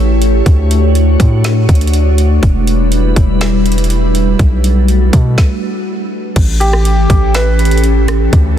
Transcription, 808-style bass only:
0.00 0.42 A1 loud
0.46 1.17 D2 loud
1.20 1.67 A2 loud
1.69 2.40 D2 loud
2.43 3.14 E1 loud
3.16 4.35 E1 loud
4.39 5.10 B1 loud
5.13 5.37 B2 loud
6.36 7.07 A1 loud
7.10 8.29 A1 loud
8.33 8.58 D2 loud

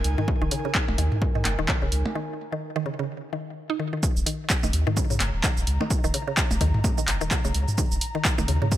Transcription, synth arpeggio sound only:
0.18 0.20 D#3 medium
0.42 0.44 D#3 loud
0.52 0.54 C#3 medium
0.65 0.69 C#3 medium
0.98 1.02 D#3 medium
1.35 1.37 D#3 medium
1.59 1.61 D#3 loud
1.69 1.71 C#3 medium
1.82 1.86 C#3 medium
2.15 2.19 D#3 medium
2.52 2.54 D#3 medium
2.76 2.78 D#3 loud
2.86 2.88 C#3 medium
2.99 3.04 C#3 medium
3.33 3.35 D#3 medium
3.70 3.73 D#4 medium
3.79 3.85 D#3 medium
3.93 3.95 D#3 medium
4.26 4.30 D#3 medium
4.63 4.65 D#3 medium
4.87 4.89 D#3 loud
4.97 4.99 C#3 medium
5.10 5.15 C#3 medium
5.44 5.48 D#3 medium
5.81 5.83 D#3 medium
6.04 6.06 D#3 loud
6.14 6.16 C#3 medium
6.27 6.32 C#3 medium
6.61 6.65 D#3 medium
6.98 7.00 D#3 medium
7.21 7.23 D#3 loud
7.31 7.33 C#3 medium
7.45 7.49 C#3 medium
7.78 7.82 D#3 medium
8.15 8.17 D#3 medium
8.38 8.40 D#3 loud
8.48 8.51 C#3 medium
8.62 8.66 C#3 medium

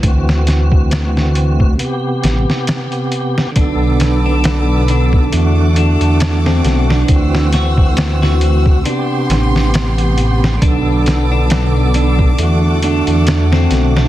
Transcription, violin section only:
3.56 5.31 B4 medium
3.56 5.31 A5 medium
3.56 5.31 D6 medium
5.33 7.07 A4 medium
5.33 8.82 F#5 medium
5.33 7.07 D6 medium
7.09 8.84 C5 medium
7.09 8.84 E6 medium
8.86 12.35 B3 medium
8.86 10.60 G5 medium
8.86 10.60 C6 medium
10.62 12.37 A5 medium
10.62 14.08 D6 medium
12.38 14.08 A4 medium
12.38 14.08 F#5 medium

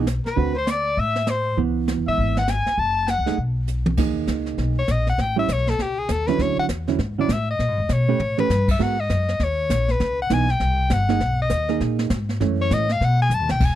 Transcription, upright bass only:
0.00 0.22 B1 medium
0.25 muted upright bass stroke soft
0.37 0.94 D2 medium
0.97 1.54 A2 medium
1.57 1.95 C#2 medium
1.98 2.07 E2 medium
2.08 2.17 G#2 medium
2.18 2.63 G#1 medium
2.67 muted upright bass stroke soft
2.78 3.15 F#1 medium
3.18 3.28 C#2 medium
3.28 3.37 F#2 medium
3.38 3.95 B1 medium
3.97 4.27 D#2 medium
4.27 4.57 C#2 medium
4.58 4.87 B1 medium
4.88 5.17 A#1 medium
5.18 5.47 A1 medium
5.49 5.78 B1 medium
5.78 6.08 C#2 medium
6.09 6.38 D#2 medium
6.38 6.56 D2 medium
6.57 muted upright bass stroke soft
6.68 6.98 E2 medium
6.99 7.28 G#2 medium
7.29 7.58 A2 medium
7.59 7.68 A#2 medium
7.68 7.77 G#2 medium
7.78 7.88 E2 medium
7.89 8.18 B2 medium
8.19 8.48 A2 medium
8.49 8.79 G2 medium
8.80 9.09 G#2 medium
9.09 9.39 F#2 medium
9.39 9.69 D#2 medium
9.70 9.99 A#1 medium
10.00 10.29 C#2 medium
10.30 10.59 B1 medium
10.60 10.89 C2 medium
10.90 11.19 G1 loud
11.20 11.49 B1 medium
11.50 11.79 D#2 medium
11.80 12.10 A#2 medium
12.10 12.39 G#2 medium
12.40 12.69 F#2 medium
12.71 13.00 A2 medium
13.00 13.29 B2 medium
13.29 13.40 F#2 medium
13.40 13.50 D#2 medium
13.50 13.59 B1 medium
13.60 13.75 E1 medium

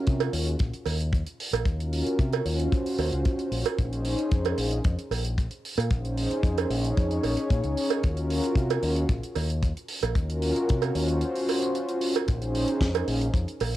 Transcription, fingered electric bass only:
0.07 0.28 C3 medium
0.33 0.54 D#2 medium
0.60 0.71 A#1 medium
0.86 1.22 D#2 medium
1.53 1.63 A#1 medium
1.65 2.01 D#2 medium
2.19 2.40 C3 medium
2.45 2.66 D#2 medium
2.98 3.09 D#2 medium
3.12 3.22 C#2 medium
3.51 3.62 A#1 medium
3.78 4.14 A#1 medium
4.32 4.52 F2 medium
4.58 4.79 A#1 medium
4.85 4.95 F2 medium
5.11 5.46 A#1 medium
5.78 5.88 A#2 medium
5.90 6.26 A#1 medium
6.43 6.64 F2 medium
6.70 6.91 A#1 loud
6.97 7.18 F2 medium
7.23 7.34 A#1 medium
7.50 7.61 A#2 medium
7.64 7.74 C#2 medium
8.04 8.39 D#2 loud
8.55 8.77 C3 medium
8.83 9.04 D#2 medium
9.09 9.20 A#1 medium
9.36 9.71 D#2 medium
10.03 10.13 A#1 medium
10.15 10.51 D#2 medium
10.70 10.90 C3 medium
10.95 11.22 D#2 loud
12.28 12.64 A#1 medium
12.81 13.02 F2 medium
13.07 13.28 A#1 medium
13.34 13.45 F2 medium
13.61 13.77 A#1 medium

